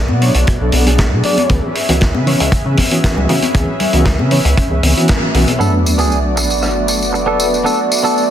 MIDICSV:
0, 0, Header, 1, 9, 480
1, 0, Start_track
1, 0, Tempo, 512821
1, 1402, Time_signature, 4, 2, 24, 8
1, 7772, End_track
2, 0, Start_track
2, 0, Title_t, "Soft synth lead"
2, 0, Program_c, 0, 80
2, 1165, Note_on_c, 0, 74, 92
2, 1453, Note_off_c, 0, 74, 0
2, 6807, Note_on_c, 0, 71, 84
2, 7287, Note_off_c, 0, 71, 0
2, 7772, End_track
3, 0, Start_track
3, 0, Title_t, "Analog synth pad"
3, 0, Program_c, 1, 89
3, 0, Note_on_c, 1, 57, 71
3, 0, Note_on_c, 1, 59, 79
3, 0, Note_on_c, 1, 66, 72
3, 0, Note_on_c, 1, 74, 87
3, 1359, Note_off_c, 1, 57, 0
3, 1359, Note_off_c, 1, 66, 0
3, 1359, Note_off_c, 1, 74, 0
3, 1360, Note_off_c, 1, 59, 0
3, 1399, Note_on_c, 1, 61, 82
3, 1400, Note_on_c, 1, 68, 72
3, 1400, Note_on_c, 1, 71, 74
3, 1400, Note_on_c, 1, 76, 87
3, 5203, Note_off_c, 1, 61, 0
3, 5203, Note_off_c, 1, 68, 0
3, 5203, Note_off_c, 1, 71, 0
3, 5203, Note_off_c, 1, 76, 0
3, 5231, Note_on_c, 1, 66, 69
3, 5233, Note_on_c, 1, 57, 69
3, 5233, Note_on_c, 1, 59, 75
3, 5233, Note_on_c, 1, 74, 81
3, 7772, Note_off_c, 1, 57, 0
3, 7772, Note_off_c, 1, 59, 0
3, 7772, Note_off_c, 1, 66, 0
3, 7772, Note_off_c, 1, 74, 0
3, 7772, End_track
4, 0, Start_track
4, 0, Title_t, "Clean electric guitar"
4, 0, Program_c, 2, 27
4, 5230, Note_on_c, 2, 59, 92
4, 5237, Note_on_c, 2, 62, 81
4, 5243, Note_on_c, 2, 69, 100
4, 5360, Note_off_c, 2, 59, 0
4, 5364, Note_off_c, 2, 62, 0
4, 5367, Note_off_c, 2, 69, 0
4, 5598, Note_on_c, 2, 59, 73
4, 5604, Note_on_c, 2, 62, 68
4, 5611, Note_on_c, 2, 68, 81
4, 5780, Note_off_c, 2, 59, 0
4, 5783, Note_off_c, 2, 62, 0
4, 5786, Note_off_c, 2, 68, 0
4, 6796, Note_on_c, 2, 59, 97
4, 6802, Note_on_c, 2, 62, 92
4, 6809, Note_on_c, 2, 69, 108
4, 6979, Note_off_c, 2, 59, 0
4, 6982, Note_off_c, 2, 62, 0
4, 6986, Note_off_c, 2, 69, 0
4, 7154, Note_on_c, 2, 59, 94
4, 7160, Note_on_c, 2, 62, 85
4, 7166, Note_on_c, 2, 69, 101
4, 7282, Note_off_c, 2, 59, 0
4, 7285, Note_off_c, 2, 62, 0
4, 7288, Note_off_c, 2, 69, 0
4, 7517, Note_on_c, 2, 59, 71
4, 7524, Note_on_c, 2, 62, 69
4, 7530, Note_on_c, 2, 69, 80
4, 7699, Note_off_c, 2, 59, 0
4, 7703, Note_off_c, 2, 62, 0
4, 7706, Note_off_c, 2, 69, 0
4, 7772, End_track
5, 0, Start_track
5, 0, Title_t, "Reed electric piano"
5, 0, Program_c, 3, 4
5, 195, Note_on_c, 3, 54, 96
5, 198, Note_on_c, 3, 59, 84
5, 199, Note_on_c, 3, 62, 86
5, 203, Note_on_c, 3, 73, 106
5, 302, Note_off_c, 3, 54, 0
5, 303, Note_off_c, 3, 59, 0
5, 304, Note_off_c, 3, 62, 0
5, 306, Note_off_c, 3, 73, 0
5, 565, Note_on_c, 3, 54, 67
5, 567, Note_on_c, 3, 59, 63
5, 571, Note_on_c, 3, 62, 63
5, 573, Note_on_c, 3, 69, 75
5, 776, Note_off_c, 3, 54, 0
5, 777, Note_off_c, 3, 59, 0
5, 779, Note_off_c, 3, 62, 0
5, 780, Note_off_c, 3, 69, 0
5, 803, Note_on_c, 3, 54, 83
5, 805, Note_on_c, 3, 59, 78
5, 810, Note_on_c, 3, 62, 77
5, 812, Note_on_c, 3, 68, 94
5, 1133, Note_off_c, 3, 54, 0
5, 1133, Note_off_c, 3, 59, 0
5, 1136, Note_off_c, 3, 62, 0
5, 1137, Note_off_c, 3, 68, 0
5, 1160, Note_on_c, 3, 54, 78
5, 1164, Note_on_c, 3, 59, 70
5, 1167, Note_on_c, 3, 62, 72
5, 1171, Note_on_c, 3, 68, 87
5, 1264, Note_off_c, 3, 54, 0
5, 1266, Note_off_c, 3, 59, 0
5, 1268, Note_off_c, 3, 62, 0
5, 1270, Note_off_c, 3, 68, 0
5, 1402, Note_on_c, 3, 52, 88
5, 1402, Note_on_c, 3, 59, 79
5, 1406, Note_on_c, 3, 61, 79
5, 1408, Note_on_c, 3, 68, 94
5, 1564, Note_off_c, 3, 52, 0
5, 1565, Note_off_c, 3, 59, 0
5, 1566, Note_off_c, 3, 61, 0
5, 1568, Note_off_c, 3, 68, 0
5, 1767, Note_on_c, 3, 52, 92
5, 1767, Note_on_c, 3, 59, 84
5, 1770, Note_on_c, 3, 61, 85
5, 1773, Note_on_c, 3, 66, 100
5, 1923, Note_off_c, 3, 52, 0
5, 1923, Note_off_c, 3, 59, 0
5, 1925, Note_off_c, 3, 61, 0
5, 1926, Note_off_c, 3, 66, 0
5, 2117, Note_on_c, 3, 52, 100
5, 2122, Note_on_c, 3, 59, 90
5, 2123, Note_on_c, 3, 61, 90
5, 2128, Note_on_c, 3, 73, 109
5, 2223, Note_off_c, 3, 52, 0
5, 2225, Note_off_c, 3, 59, 0
5, 2226, Note_off_c, 3, 61, 0
5, 2228, Note_off_c, 3, 73, 0
5, 2478, Note_on_c, 3, 52, 69
5, 2481, Note_on_c, 3, 59, 62
5, 2483, Note_on_c, 3, 61, 62
5, 2489, Note_on_c, 3, 68, 78
5, 2692, Note_off_c, 3, 52, 0
5, 2694, Note_off_c, 3, 59, 0
5, 2695, Note_off_c, 3, 61, 0
5, 2698, Note_off_c, 3, 68, 0
5, 2718, Note_on_c, 3, 52, 84
5, 2722, Note_on_c, 3, 59, 80
5, 2727, Note_on_c, 3, 61, 78
5, 2729, Note_on_c, 3, 66, 94
5, 3050, Note_off_c, 3, 52, 0
5, 3052, Note_off_c, 3, 59, 0
5, 3054, Note_off_c, 3, 61, 0
5, 3056, Note_off_c, 3, 66, 0
5, 3075, Note_on_c, 3, 52, 77
5, 3079, Note_on_c, 3, 59, 73
5, 3080, Note_on_c, 3, 61, 74
5, 3085, Note_on_c, 3, 66, 89
5, 3182, Note_off_c, 3, 52, 0
5, 3184, Note_off_c, 3, 59, 0
5, 3184, Note_off_c, 3, 61, 0
5, 3187, Note_off_c, 3, 66, 0
5, 3313, Note_on_c, 3, 52, 90
5, 3318, Note_on_c, 3, 59, 83
5, 3320, Note_on_c, 3, 61, 82
5, 3324, Note_on_c, 3, 68, 102
5, 3480, Note_off_c, 3, 52, 0
5, 3482, Note_off_c, 3, 59, 0
5, 3484, Note_off_c, 3, 61, 0
5, 3485, Note_off_c, 3, 68, 0
5, 3681, Note_on_c, 3, 52, 91
5, 3681, Note_on_c, 3, 59, 85
5, 3686, Note_on_c, 3, 61, 82
5, 3688, Note_on_c, 3, 66, 101
5, 3840, Note_off_c, 3, 52, 0
5, 3840, Note_off_c, 3, 59, 0
5, 3843, Note_off_c, 3, 61, 0
5, 3844, Note_off_c, 3, 66, 0
5, 4033, Note_on_c, 3, 52, 98
5, 4036, Note_on_c, 3, 59, 90
5, 4040, Note_on_c, 3, 61, 89
5, 4042, Note_on_c, 3, 73, 107
5, 4141, Note_off_c, 3, 52, 0
5, 4143, Note_off_c, 3, 59, 0
5, 4144, Note_off_c, 3, 61, 0
5, 4145, Note_off_c, 3, 73, 0
5, 4398, Note_on_c, 3, 52, 72
5, 4400, Note_on_c, 3, 59, 65
5, 4407, Note_on_c, 3, 61, 65
5, 4409, Note_on_c, 3, 68, 74
5, 4612, Note_off_c, 3, 52, 0
5, 4613, Note_off_c, 3, 59, 0
5, 4617, Note_off_c, 3, 61, 0
5, 4618, Note_off_c, 3, 68, 0
5, 4643, Note_on_c, 3, 52, 88
5, 4648, Note_on_c, 3, 59, 77
5, 4651, Note_on_c, 3, 61, 81
5, 4654, Note_on_c, 3, 66, 95
5, 4972, Note_off_c, 3, 52, 0
5, 4975, Note_off_c, 3, 59, 0
5, 4977, Note_off_c, 3, 61, 0
5, 4978, Note_off_c, 3, 66, 0
5, 5000, Note_on_c, 3, 52, 83
5, 5003, Note_on_c, 3, 59, 73
5, 5008, Note_on_c, 3, 61, 73
5, 5009, Note_on_c, 3, 66, 85
5, 5104, Note_off_c, 3, 52, 0
5, 5106, Note_off_c, 3, 59, 0
5, 5108, Note_off_c, 3, 61, 0
5, 5109, Note_off_c, 3, 66, 0
5, 5234, Note_on_c, 3, 54, 62
5, 5242, Note_on_c, 3, 59, 59
5, 5246, Note_on_c, 3, 62, 59
5, 5252, Note_on_c, 3, 57, 70
5, 7772, Note_off_c, 3, 54, 0
5, 7772, Note_off_c, 3, 57, 0
5, 7772, Note_off_c, 3, 59, 0
5, 7772, Note_off_c, 3, 62, 0
5, 7772, End_track
6, 0, Start_track
6, 0, Title_t, "Analog synth bass"
6, 0, Program_c, 4, 38
6, 0, Note_on_c, 4, 35, 88
6, 87, Note_on_c, 4, 47, 83
6, 101, Note_off_c, 4, 35, 0
6, 284, Note_off_c, 4, 47, 0
6, 325, Note_on_c, 4, 35, 99
6, 422, Note_off_c, 4, 35, 0
6, 448, Note_on_c, 4, 47, 80
6, 548, Note_off_c, 4, 47, 0
6, 570, Note_on_c, 4, 35, 80
6, 664, Note_off_c, 4, 35, 0
6, 681, Note_on_c, 4, 35, 87
6, 1047, Note_on_c, 4, 47, 102
6, 1061, Note_off_c, 4, 35, 0
6, 1143, Note_off_c, 4, 47, 0
6, 1402, Note_on_c, 4, 37, 95
6, 1505, Note_off_c, 4, 37, 0
6, 1769, Note_on_c, 4, 37, 92
6, 2007, Note_on_c, 4, 49, 87
6, 2021, Note_off_c, 4, 37, 0
6, 2204, Note_off_c, 4, 49, 0
6, 2248, Note_on_c, 4, 37, 96
6, 2343, Note_off_c, 4, 37, 0
6, 2359, Note_on_c, 4, 49, 43
6, 2460, Note_off_c, 4, 49, 0
6, 2487, Note_on_c, 4, 49, 78
6, 2583, Note_off_c, 4, 49, 0
6, 2963, Note_on_c, 4, 37, 96
6, 3061, Note_off_c, 4, 37, 0
6, 3079, Note_on_c, 4, 49, 88
6, 3184, Note_off_c, 4, 49, 0
6, 3321, Note_on_c, 4, 37, 98
6, 3425, Note_off_c, 4, 37, 0
6, 3681, Note_on_c, 4, 37, 91
6, 3921, Note_on_c, 4, 49, 86
6, 3935, Note_off_c, 4, 37, 0
6, 4121, Note_off_c, 4, 49, 0
6, 4163, Note_on_c, 4, 37, 99
6, 4261, Note_off_c, 4, 37, 0
6, 4284, Note_on_c, 4, 49, 82
6, 4386, Note_off_c, 4, 49, 0
6, 4403, Note_on_c, 4, 37, 83
6, 4500, Note_off_c, 4, 37, 0
6, 4521, Note_on_c, 4, 37, 83
6, 4624, Note_off_c, 4, 37, 0
6, 5003, Note_on_c, 4, 35, 97
6, 5106, Note_off_c, 4, 35, 0
6, 5125, Note_on_c, 4, 35, 80
6, 5221, Note_off_c, 4, 35, 0
6, 7772, End_track
7, 0, Start_track
7, 0, Title_t, "Sub drop"
7, 0, Program_c, 5, 103
7, 5238, Note_on_c, 5, 60, 63
7, 7160, Note_off_c, 5, 60, 0
7, 7772, End_track
8, 0, Start_track
8, 0, Title_t, "Muted clean electric guitar strokes"
8, 5474, Note_on_c, 9, 29, 28
8, 5568, Note_off_c, 9, 29, 0
8, 5952, Note_on_c, 9, 29, 75
8, 6046, Note_off_c, 9, 29, 0
8, 6076, Note_on_c, 9, 29, 27
8, 6169, Note_off_c, 9, 29, 0
8, 6191, Note_on_c, 9, 29, 27
8, 6284, Note_off_c, 9, 29, 0
8, 6433, Note_on_c, 9, 29, 29
8, 6527, Note_off_c, 9, 29, 0
8, 6670, Note_on_c, 9, 29, 74
8, 6764, Note_off_c, 9, 29, 0
8, 7395, Note_on_c, 9, 29, 30
8, 7488, Note_off_c, 9, 29, 0
8, 7772, End_track
9, 0, Start_track
9, 0, Title_t, "Drums"
9, 78, Note_on_c, 9, 63, 89
9, 172, Note_off_c, 9, 63, 0
9, 202, Note_on_c, 9, 46, 90
9, 296, Note_off_c, 9, 46, 0
9, 322, Note_on_c, 9, 42, 73
9, 415, Note_off_c, 9, 42, 0
9, 440, Note_on_c, 9, 42, 64
9, 448, Note_on_c, 9, 36, 111
9, 533, Note_off_c, 9, 42, 0
9, 541, Note_off_c, 9, 36, 0
9, 675, Note_on_c, 9, 46, 102
9, 680, Note_on_c, 9, 63, 58
9, 768, Note_off_c, 9, 46, 0
9, 774, Note_off_c, 9, 63, 0
9, 810, Note_on_c, 9, 42, 76
9, 903, Note_off_c, 9, 42, 0
9, 919, Note_on_c, 9, 42, 64
9, 923, Note_on_c, 9, 38, 107
9, 926, Note_on_c, 9, 36, 100
9, 1013, Note_off_c, 9, 42, 0
9, 1017, Note_off_c, 9, 38, 0
9, 1019, Note_off_c, 9, 36, 0
9, 1155, Note_on_c, 9, 46, 88
9, 1249, Note_off_c, 9, 46, 0
9, 1287, Note_on_c, 9, 42, 69
9, 1288, Note_on_c, 9, 63, 80
9, 1380, Note_off_c, 9, 42, 0
9, 1382, Note_off_c, 9, 63, 0
9, 1397, Note_on_c, 9, 42, 70
9, 1402, Note_on_c, 9, 36, 116
9, 1491, Note_off_c, 9, 42, 0
9, 1496, Note_off_c, 9, 36, 0
9, 1641, Note_on_c, 9, 46, 92
9, 1734, Note_off_c, 9, 46, 0
9, 1767, Note_on_c, 9, 42, 76
9, 1860, Note_off_c, 9, 42, 0
9, 1879, Note_on_c, 9, 42, 61
9, 1883, Note_on_c, 9, 38, 111
9, 1889, Note_on_c, 9, 36, 110
9, 1972, Note_off_c, 9, 42, 0
9, 1977, Note_off_c, 9, 38, 0
9, 1982, Note_off_c, 9, 36, 0
9, 2009, Note_on_c, 9, 63, 89
9, 2103, Note_off_c, 9, 63, 0
9, 2123, Note_on_c, 9, 46, 85
9, 2217, Note_off_c, 9, 46, 0
9, 2247, Note_on_c, 9, 42, 78
9, 2341, Note_off_c, 9, 42, 0
9, 2359, Note_on_c, 9, 36, 116
9, 2359, Note_on_c, 9, 42, 67
9, 2453, Note_off_c, 9, 36, 0
9, 2453, Note_off_c, 9, 42, 0
9, 2595, Note_on_c, 9, 46, 106
9, 2602, Note_on_c, 9, 36, 55
9, 2609, Note_on_c, 9, 63, 62
9, 2689, Note_off_c, 9, 46, 0
9, 2696, Note_off_c, 9, 36, 0
9, 2703, Note_off_c, 9, 63, 0
9, 2725, Note_on_c, 9, 42, 82
9, 2818, Note_off_c, 9, 42, 0
9, 2844, Note_on_c, 9, 42, 67
9, 2845, Note_on_c, 9, 36, 117
9, 2845, Note_on_c, 9, 38, 113
9, 2938, Note_off_c, 9, 42, 0
9, 2939, Note_off_c, 9, 36, 0
9, 2939, Note_off_c, 9, 38, 0
9, 2973, Note_on_c, 9, 64, 86
9, 3067, Note_off_c, 9, 64, 0
9, 3079, Note_on_c, 9, 46, 90
9, 3173, Note_off_c, 9, 46, 0
9, 3203, Note_on_c, 9, 42, 77
9, 3206, Note_on_c, 9, 63, 84
9, 3297, Note_off_c, 9, 42, 0
9, 3300, Note_off_c, 9, 63, 0
9, 3318, Note_on_c, 9, 42, 65
9, 3320, Note_on_c, 9, 36, 110
9, 3412, Note_off_c, 9, 42, 0
9, 3413, Note_off_c, 9, 36, 0
9, 3554, Note_on_c, 9, 46, 92
9, 3560, Note_on_c, 9, 64, 78
9, 3648, Note_off_c, 9, 46, 0
9, 3653, Note_off_c, 9, 64, 0
9, 3677, Note_on_c, 9, 42, 80
9, 3771, Note_off_c, 9, 42, 0
9, 3793, Note_on_c, 9, 38, 108
9, 3794, Note_on_c, 9, 42, 70
9, 3797, Note_on_c, 9, 36, 110
9, 3887, Note_off_c, 9, 38, 0
9, 3887, Note_off_c, 9, 42, 0
9, 3890, Note_off_c, 9, 36, 0
9, 3925, Note_on_c, 9, 63, 79
9, 4018, Note_off_c, 9, 63, 0
9, 4033, Note_on_c, 9, 46, 94
9, 4126, Note_off_c, 9, 46, 0
9, 4165, Note_on_c, 9, 42, 74
9, 4259, Note_off_c, 9, 42, 0
9, 4282, Note_on_c, 9, 36, 116
9, 4285, Note_on_c, 9, 42, 60
9, 4376, Note_off_c, 9, 36, 0
9, 4379, Note_off_c, 9, 42, 0
9, 4521, Note_on_c, 9, 46, 110
9, 4527, Note_on_c, 9, 63, 64
9, 4615, Note_off_c, 9, 46, 0
9, 4621, Note_off_c, 9, 63, 0
9, 4654, Note_on_c, 9, 42, 72
9, 4747, Note_off_c, 9, 42, 0
9, 4753, Note_on_c, 9, 42, 66
9, 4765, Note_on_c, 9, 38, 110
9, 4768, Note_on_c, 9, 36, 119
9, 4846, Note_off_c, 9, 42, 0
9, 4858, Note_off_c, 9, 38, 0
9, 4861, Note_off_c, 9, 36, 0
9, 5002, Note_on_c, 9, 46, 95
9, 5096, Note_off_c, 9, 46, 0
9, 5123, Note_on_c, 9, 63, 80
9, 5126, Note_on_c, 9, 42, 70
9, 5217, Note_off_c, 9, 63, 0
9, 5219, Note_off_c, 9, 42, 0
9, 5248, Note_on_c, 9, 54, 31
9, 5342, Note_off_c, 9, 54, 0
9, 5488, Note_on_c, 9, 54, 71
9, 5582, Note_off_c, 9, 54, 0
9, 5602, Note_on_c, 9, 54, 36
9, 5695, Note_off_c, 9, 54, 0
9, 5726, Note_on_c, 9, 54, 29
9, 5820, Note_off_c, 9, 54, 0
9, 5963, Note_on_c, 9, 54, 65
9, 6056, Note_off_c, 9, 54, 0
9, 6087, Note_on_c, 9, 54, 39
9, 6181, Note_off_c, 9, 54, 0
9, 6200, Note_on_c, 9, 37, 50
9, 6202, Note_on_c, 9, 54, 29
9, 6294, Note_off_c, 9, 37, 0
9, 6295, Note_off_c, 9, 54, 0
9, 6441, Note_on_c, 9, 54, 72
9, 6535, Note_off_c, 9, 54, 0
9, 6574, Note_on_c, 9, 54, 39
9, 6668, Note_off_c, 9, 54, 0
9, 6691, Note_on_c, 9, 54, 29
9, 6785, Note_off_c, 9, 54, 0
9, 6923, Note_on_c, 9, 54, 69
9, 7017, Note_off_c, 9, 54, 0
9, 7057, Note_on_c, 9, 54, 38
9, 7151, Note_off_c, 9, 54, 0
9, 7172, Note_on_c, 9, 54, 28
9, 7265, Note_off_c, 9, 54, 0
9, 7410, Note_on_c, 9, 54, 66
9, 7503, Note_off_c, 9, 54, 0
9, 7531, Note_on_c, 9, 54, 34
9, 7625, Note_off_c, 9, 54, 0
9, 7654, Note_on_c, 9, 54, 27
9, 7747, Note_off_c, 9, 54, 0
9, 7772, End_track
0, 0, End_of_file